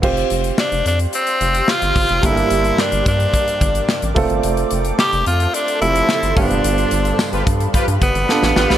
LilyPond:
<<
  \new Staff \with { instrumentName = "Ambient pad" } { \time 4/4 \key f \major \tempo 4 = 109 <g' c'' f'' c'''>1 | <bes' d'' g'' d'''>2.~ <bes' d'' g'' d'''>8 <a' c'' a'' c'''>8~ | <a' c'' a'' c'''>2.~ <a' c'' a'' c'''>8 <g' d'' f'' b''>8~ | <g' d'' f'' b''>1 | }
  \new Staff \with { instrumentName = "Analog polysynth" } { \time 4/4 \key f \major r1 | r1 | r1 | r4 r16 <f' g' b'>16 r8 <f' g' b'>16 r4 r16 <f' g' b'>8 | }
  \new Staff \with { instrumentName = "Grand piano" } { \time 4/4 \key f \major <c' f' g' c''>1 | <bes d' g' a' bes'>2.~ <bes d' g' a' bes'>8 <a c' f' a'>8~ | <a c' f' a'>2~ <a c' f' a'>8 <f a c' g'>4 <a b d' f' g'>8~ | <a b d' f' g'>2. <b d' f' a'>4 | }
  \new Staff \with { instrumentName = "Grand piano" } { \clef bass \time 4/4 \key f \major r1 | g,4. r2 r8 | r2. r8 g,8~ | g,4 r2. | }
  \new Staff \with { instrumentName = "Tenor saxophone" } { \time 4/4 \key f \major r4 d'8 d'8 c'4 f'4 | e'4 d'8 d'2 r8 | r4 g'8 f'8 d'8 e'4 d'8~ | d'4. r4 b4. | }
  \new Staff \with { instrumentName = "Analog synth bass" } { \clef bass \time 4/4 \key f \major f,,8 f,,8 r16 f,,16 f,8 r8 f,,8 r16 g,,16 g,,16 f,,16 | g,,8 g,,8 r16 g,,16 g,8 r8 g,,8 r16 a,,16 f,,16 g,,16 | f,,8 f,,8 r16 f,,16 f,8 r8 f,,8 r16 g,,16 g,,16 f,,16 | g,,8 g,,8 r16 g,,16 g,8 r16 g,16 g,,16 g,,16 r16 a,,16 a,,16 b,,16 | }
  \new DrumStaff \with { instrumentName = "Drums" } \drummode { \time 4/4 <cymc bd>16 hh16 hh16 hh16 sn16 hh16 hh16 hh16 hh16 hh16 hh16 hh16 sn16 hh16 <hho bd>16 hh16 | <hh bd>16 hh16 hh16 hh16 sn16 hh16 <hh bd>16 hh16 <hh bd>16 hh16 <hh bd>16 hh16 sn16 hh16 <hho bd>16 hh16 | hh16 hh16 hh16 hh16 sn16 hh16 hh16 hh16 hh16 hh16 hh16 hh16 sn16 hh16 <hho bd>16 hh16 | hh16 hh16 hh16 hh16 <sn tamb>16 hh16 <hh bd>16 hh16 <hh bd>16 hh16 <hh bd>16 hh16 sn16 sn16 sn16 sn16 | }
>>